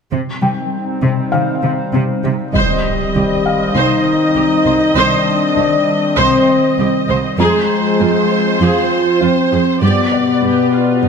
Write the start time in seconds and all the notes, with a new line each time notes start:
0.11 C3 G3 C4 D#4 C5
0.41 C3 G3 G5
1.03 C3
1.32 C3 D#3 F5
1.63 C3 D#3
1.94 C3
2.24 C3 G3
2.53 C2 C3 D#3 G3 C4 C5 D#5, impact
3.15 C2 D#3 G4
3.46 F5
3.75 C2 C3 D#4 C5
4.36 C2 C4 G4
4.66 C2 C4 C5
4.96 C2 C3 D4 C5
5.57 C2 D#3 G4
6.18 C2 C3 C4 C5
6.79 C2 C4 G4
7.09 C2 C4 C5
7.39 F2 F3 G#3 C4 F4 G#4 C5 A#5
8.00 F2 G#3 F4
8.61 F2 F3 F4 G#4
9.21 F2 C4 F4
9.52 F2 F4 G#4
9.82 G2 B2 G3 B3 G4 B4 D5
10.12 D5
10.42 G2 B3 G4
10.73 F4
11.03 G2 G3 D#4